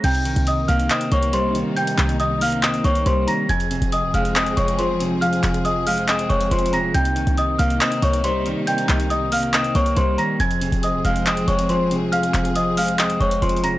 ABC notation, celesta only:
X:1
M:4/4
L:1/8
Q:1/4=139
K:Cphr
V:1 name="Celesta"
[gg']2 [ee'] [ff'] [ee'] [dd'] [cc'] z | [gg']2 [ee'] [ff'] [ee'] [dd'] [cc'] [bb'] | [aa']2 [ee'] [ff'] [ee'] [dd'] [cc'] z | [ff']2 [ee'] [ff'] [ee'] [dd'] [cc'] [bb'] |
[gg']2 [ee'] [ff'] [ee'] [dd'] [cc'] z | [gg']2 [ee'] [ff'] [ee'] [dd'] [cc'] [bb'] | [aa']2 [ee'] [ff'] [ee'] [dd'] [cc'] z | [ff']2 [ee'] [ff'] [ee'] [dd'] [cc'] [bb'] |]